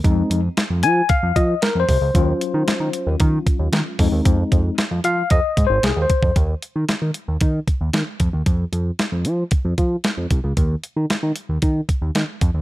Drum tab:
HH |x-x-x-x-x-x-x-o-|x-x-x-x-x-x-x-o-|x-x-x-x-x-x-x-x-|x-x-x-x-x-x-x-x-|
SD |----o-------o---|----o-------o---|----o-------o---|----o-------o---|
BD |o-------o-o---o-|o-------o-o---o-|o-o-----o-o---oo|o-------o-o---o-|

HH |x-x-x-x-x-x-x-x-|x-x-x-x-x-x-x-x-|
SD |----o-------o---|----o-------o---|
BD |o-------o-o---o-|o-------o-o---o-|